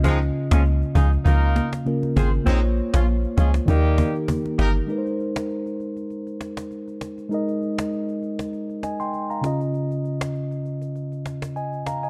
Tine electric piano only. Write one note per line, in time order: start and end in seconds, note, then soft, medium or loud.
0.00 1.81 C#3 medium
0.00 1.82 C#4 medium
0.00 1.83 F4 medium
0.00 1.84 D#5 medium
1.85 2.46 C#3 medium
1.85 2.47 C#4 medium
1.85 2.45 F4 medium
1.85 2.48 A#4 medium
2.44 3.64 A#3 medium
2.44 3.65 F4 medium
2.44 3.66 C5 medium
2.49 3.67 C#5 medium
3.66 4.86 D#3 medium
3.66 4.86 D#4 medium
3.66 3.76 F#4 medium
3.71 4.88 A#4 medium
3.75 4.91 G4 medium
4.87 7.26 G#3 medium
4.87 7.27 D#4 medium
4.87 7.28 A#4 medium
4.92 4.98 B4 medium
4.98 7.32 C5 medium
7.29 9.39 G#3 medium
7.29 9.39 D#4 medium
7.29 9.40 A#4 medium
7.34 8.82 D#5 medium
8.83 8.99 D#5 medium
8.83 8.99 G#5 medium
9.00 9.29 G5 medium
9.00 9.29 C6 medium
9.30 9.59 F5 medium
9.30 9.59 A#5 medium
9.41 11.81 C#3 medium
9.41 11.82 C#4 medium
9.41 11.83 F4 medium
9.46 11.23 D#5 medium
11.56 11.85 D#5 medium
11.56 11.85 G#5 medium
11.86 12.02 F5 medium
11.86 12.02 A#5 medium
12.03 12.10 D#5 medium
12.03 12.10 G#5 medium